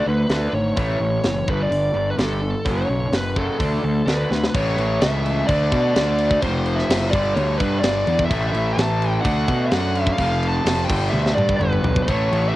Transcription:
0.06 picked electric bass D2, distorted electric guitar D3 A3, lead electric guitar B4
0.29 picked electric bass D2, distorted electric guitar D3 A3 D4, lead electric guitar B4, snare, open hi-hat
0.53 picked electric bass G#1, distorted electric guitar D3 A3, lead electric guitar C#5
0.76 picked electric bass A1, distorted electric guitar A2 E3 A3, lead electric guitar C#5, kick, open hi-hat
1.00 picked electric bass A1, distorted electric guitar A2 E3
1.24 picked electric bass F#1, distorted electric guitar A2 E3, snare, open hi-hat
1.48 picked electric bass G1, distorted electric guitar G2 D3 G3, lead electric guitar B4, kick
1.63 lead electric guitar D5
1.70 picked electric bass G1, distorted electric guitar G2 D3, open hi-hat
1.94 picked electric bass G1, distorted electric guitar G2 D3
2.10 lead electric guitar B4
2.17 picked electric bass G1, distorted electric guitar G2 D3 G3, snare, open hi-hat
2.23 lead electric guitar A4
2.42 distorted electric guitar G2 D3
2.65 picked electric bass F#1, distorted electric guitar F#2 C#3 F#3, kick, open hi-hat
2.69 lead electric guitar C#5
2.89 picked electric bass B1, distorted electric guitar F#2 C#3
3.13 picked electric bass F#1, distorted electric guitar F#2 C#3, lead electric guitar B4, snare, open hi-hat
3.36 distorted electric guitar F#2 C#3 F#3, lead electric guitar A4, kick
3.59 picked electric bass D2, distorted electric guitar D3 A3 D4, kick, open hi-hat
3.83 picked electric bass D2, distorted electric guitar D3 A3
4.06 picked electric bass D2, distorted electric guitar D3 A3 D4, lead electric guitar B4, snare, open hi-hat
4.31 picked electric bass D2, distorted electric guitar D3 A3, snare
4.44 snare
4.54 picked electric bass A1, distorted electric guitar A2 E3 A3, lead electric guitar C#5, kick, crash
4.77 picked electric bass A1, crash
5.01 picked electric bass C#2, lead electric guitar E5, snare, crash
5.26 crash
5.47 picked electric bass D2, distorted electric guitar D3 A3 D4, lead electric guitar D5, kick, crash
5.72 picked electric bass B2, kick, crash
5.95 picked electric bass D2, lead electric guitar D5, snare, crash
6.18 crash
6.31 kick
6.42 picked electric bass F1, distorted electric guitar F2 C3 F3, lead electric guitar C5, kick, crash
6.66 crash
6.76 lead electric guitar E5, snare
6.89 picked electric bass F#1, snare, crash
7.10 picked electric bass G1, distorted electric guitar G2 D3, lead electric guitar D5, kick, crash
7.15 distorted electric guitar G3
7.34 picked electric bass D2, lead electric guitar C#5, crash
7.58 picked electric bass G2, lead electric guitar B4, kick, crash
7.79 picked electric bass G1, lead electric guitar D5, crash
7.84 snare
8.07 picked electric bass E2, crash
8.19 kick
8.25 lead electric guitar E5
8.29 picked electric bass A1, distorted electric guitar A2 E3 A3, kick, crash
8.53 picked electric bass A1, crash
8.73 lead electric guitar A5
8.77 picked electric bass A1, snare, crash
9.02 crash
9.21 distorted electric guitar D3 A3, lead electric guitar F#5
9.25 picked electric bass D2, distorted electric guitar D4, kick, crash
9.48 picked electric bass B2, kick, crash
9.66 lead electric guitar F#5
9.71 picked electric bass F#2, snare, crash
9.95 crash
10.07 kick
10.13 lead electric guitar F5
10.18 picked electric bass F1, distorted electric guitar F2 C3 F3, kick, crash
10.43 crash
10.48 lead electric guitar A5
10.65 picked electric bass F1, snare, crash
10.85 distorted electric guitar G2 D3, lead electric guitar G5
10.90 picked electric bass G1, distorted electric guitar G3, kick, crash
11.09 picked electric bass D2, lead electric guitar E5
11.14 high tom
11.26 snare
11.35 picked electric bass G2, lead electric guitar D5, mid tom
11.49 kick
11.56 picked electric bass G1, lead electric guitar B4
11.61 mid tom
11.73 mid tom
11.83 picked electric bass B1, floor tom
11.96 kick
12.02 lead electric guitar C#5
12.07 picked electric bass A1, distorted electric guitar A2 E3 A3, kick, crash
12.31 picked electric bass A1, crash
12.49 lead electric guitar E5

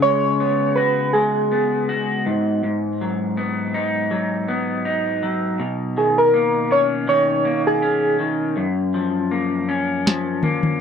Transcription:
Already playing: clean electric guitar C#3 B3
0.02 clean electric guitar G#3, synth keys C#5
0.40 clean electric guitar B3
0.76 clean electric guitar F#4, synth keys B4
1.13 clean electric guitar G#3, synth keys G#4
1.52 clean electric guitar B3
1.89 clean electric guitar F#4
2.26 clean electric guitar G#2
2.63 clean electric guitar G#2
3.01 clean electric guitar F#3
3.37 clean electric guitar B3
3.74 clean electric guitar D#4
4.11 clean electric guitar F#3
4.48 clean electric guitar B3
4.85 clean electric guitar D#4
5.23 clean electric guitar F#3
5.60 clean electric guitar B2
5.97 clean electric guitar D#3, synth keys G#4
6.18 synth keys A#4
6.34 clean electric guitar A#3
6.71 clean electric guitar C#4, synth keys C#5
7.08 clean electric guitar D#3, synth keys C#5
7.45 clean electric guitar A#3
7.67 synth keys G#4
7.82 clean electric guitar C#4
8.19 clean electric guitar D#3
8.57 clean electric guitar F#2
8.94 clean electric guitar F3
9.31 clean electric guitar A#3
9.69 clean electric guitar C#4
10.06 clean electric guitar F3, snare
10.43 clean electric guitar A#3, high tom
10.63 high tom

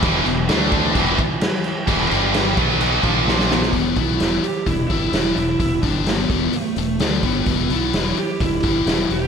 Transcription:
0.02 fingered electric bass E1, distorted electric guitar E2 B2 E3, kick, crash
0.26 fingered electric bass E1, distorted electric guitar E2 B2, snare, crash
0.49 fingered electric bass D2, distorted electric guitar D3 A3 D4, snare, crash
0.72 kick, crash
0.95 fingered electric bass E1, distorted electric guitar E2 B2 E3, kick, crash
1.19 kick, crash
1.41 snare, crash
1.64 crash
1.88 fingered electric bass E1, distorted electric guitar E2 B2 E3, kick, crash
2.11 fingered electric bass G1, distorted electric guitar G2 D3 G3, snare, crash
2.34 snare, crash
2.57 fingered electric bass B1, distorted electric guitar B2 F#3 B3, kick, crash
2.81 crash
3.03 fingered electric bass A#1, distorted electric guitar A#2 F3 A#3, kick, crash
3.28 lead electric guitar A#3, snare
3.39 snare
3.51 lead electric guitar B3, snare
3.62 snare
3.72 fingered electric bass E1, distorted electric guitar E2 B2 E3, kick, open hi-hat
3.95 fingered electric bass B1, distorted electric guitar B2 F#3 B3, lead electric guitar E4, kick, open hi-hat
4.19 fingered electric bass E1, distorted electric guitar E2 B2 E3, lead electric guitar E4, snare, open hi-hat
4.43 lead electric guitar G4, muted distorted electric guitar stroke, muted fingered electric bass stroke, open hi-hat
4.67 fingered electric bass E1, distorted electric guitar E2 B2, lead electric guitar E4, kick, open hi-hat
4.88 fingered electric bass G1, distorted electric guitar G2 D3 G3, lead electric guitar E4, kick, open hi-hat
5.12 fingered electric bass E1, distorted electric guitar E2 B2 E3, snare, open hi-hat
5.36 fingered electric bass E1, distorted electric guitar E2 B2, lead electric guitar E4, open hi-hat
5.59 fingered electric bass E1, distorted electric guitar E2 B2, lead electric guitar E4, kick, open hi-hat
5.83 fingered electric bass G1, distorted electric guitar G2 D3 G3, lead electric guitar D4, kick, open hi-hat
6.06 lead electric guitar B3, snare, open hi-hat
6.29 fingered electric bass E1, distorted electric guitar E2 B2 E3, kick, open hi-hat
6.53 muted fingered electric bass stroke, muted distorted electric guitar stroke, open hi-hat
6.62 lead electric guitar A3
6.76 fingered electric bass E1, distorted electric guitar E2 B2, lead electric guitar A3, open hi-hat
6.99 fingered electric bass D2, distorted electric guitar D3 A3 D4, lead electric guitar G3, snare, open hi-hat
7.23 fingered electric bass G1, distorted electric guitar G2 D3 G3, lead electric guitar B3, kick, open hi-hat
7.46 fingered electric bass E1, distorted electric guitar E2 B2 E3, kick, open hi-hat
7.70 fingered electric bass B1, distorted electric guitar B2 F#3 B3, lead electric guitar E4, open hi-hat
7.93 fingered electric bass E1, distorted electric guitar E2 B2 E3, snare, open hi-hat
8.17 lead electric guitar G4, muted fingered electric bass stroke, muted distorted electric guitar stroke, open hi-hat
8.40 fingered electric bass E1, distorted electric guitar E2 B2, lead electric guitar E4, kick, open hi-hat
8.63 fingered electric bass G1, distorted electric guitar G2 D3 G3, kick, open hi-hat
8.86 fingered electric bass E1, distorted electric guitar E2 B2 E3, snare, open hi-hat
9.09 fingered electric bass E1, distorted electric guitar E2 B2, lead electric guitar G4, open hi-hat

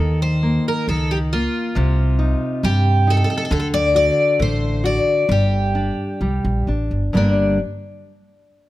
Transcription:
Already playing: upright bass D#2, nylon-string guitar D#3, twelve-string acoustic guitar A4
0.22 twelve-string acoustic guitar C5
0.43 nylon-string guitar A#3
0.68 twelve-string acoustic guitar A#4
0.88 upright bass C#2, nylon-string guitar D#3, twelve-string acoustic guitar A4
1.11 twelve-string acoustic guitar G4
1.33 nylon-string guitar A#3, twelve-string acoustic guitar F4
1.75 upright bass C2, nylon-string guitar C3
2.19 nylon-string guitar D#4
2.63 upright bass G2, nylon-string guitar G3, twelve-string acoustic guitar G4
3.07 nylon-string guitar D#4, twelve-string acoustic guitar A4
3.17 twelve-string acoustic guitar A4
3.24 twelve-string acoustic guitar A4
3.30 twelve-string acoustic guitar A4
3.38 twelve-string acoustic guitar A4
3.45 twelve-string acoustic guitar A4
3.51 upright bass D2, nylon-string guitar D3, twelve-string acoustic guitar A4
3.60 twelve-string acoustic guitar A4
3.74 twelve-string acoustic guitar D5
3.95 nylon-string guitar F#4, twelve-string acoustic guitar D5
4.39 upright bass A1, nylon-string guitar A3, twelve-string acoustic guitar C5
4.84 nylon-string guitar F#4, twelve-string acoustic guitar D5
5.29 upright bass G1, nylon-string guitar G3, twelve-string acoustic guitar G4
5.75 nylon-string guitar D4
6.21 upright bass C2, nylon-string guitar G3
6.45 upright bass A#1
6.67 upright bass A1, nylon-string guitar D4
6.91 upright bass G1
7.13 upright bass G1, nylon-string guitar G2 D3 G3 A#3, twelve-string acoustic guitar D4

